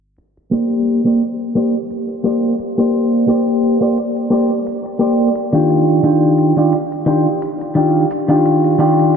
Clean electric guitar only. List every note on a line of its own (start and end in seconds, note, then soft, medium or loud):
0.51 1.00 A#3 medium
0.51 1.01 G4 medium
0.51 1.01 C5 medium
0.51 1.01 D5 medium
1.05 1.21 A#3 medium
1.05 1.21 G4 medium
1.05 1.21 C5 medium
1.05 1.22 D5 medium
1.55 1.74 A#3 medium
1.55 1.75 G4 medium
1.55 1.75 C5 medium
1.55 1.75 D5 medium
2.24 2.53 A#3 medium
2.24 2.53 G4 medium
2.24 2.53 C5 medium
2.24 2.53 D5 medium
2.78 3.24 A#3 medium
2.78 3.24 G4 medium
2.78 3.25 C5 medium
2.78 3.25 D5 medium
3.27 3.77 A#3 medium
3.27 3.77 G4 medium
3.27 3.77 C5 medium
3.27 3.77 D5 medium
3.81 3.97 A#3 medium
3.81 3.97 G4 medium
3.81 3.97 C5 medium
3.81 3.98 D5 medium
4.30 4.50 A#3 medium
4.30 4.50 G4 medium
4.30 4.50 C5 medium
4.30 4.51 D5 medium
4.99 5.28 A#3 medium
4.99 5.28 G4 medium
4.99 5.29 C5 soft
4.99 5.29 D5 medium
5.53 6.00 D#3 medium
5.53 6.00 D4 medium
5.53 6.00 F4 medium
5.53 6.00 G4 medium
6.03 6.52 D#3 medium
6.03 6.53 D4 medium
6.03 6.53 F4 medium
6.03 6.53 G4 medium
6.56 6.72 D#3 medium
6.56 6.73 D4 medium
6.56 6.73 F4 medium
6.56 6.73 G4 medium
7.06 7.26 D#3 medium
7.06 7.26 D4 medium
7.06 7.26 F4 medium
7.06 7.26 G4 medium
7.75 8.04 D#3 medium
7.75 8.04 D4 medium
7.75 8.05 F4 medium
7.75 8.05 G4 medium
8.28 8.75 D#3 medium
8.28 8.76 D4 medium
8.28 8.76 F4 medium
8.28 8.76 G4 medium
8.78 9.17 D#3 medium
8.78 9.17 D4 medium
8.78 9.17 F4 medium
8.78 9.17 G4 medium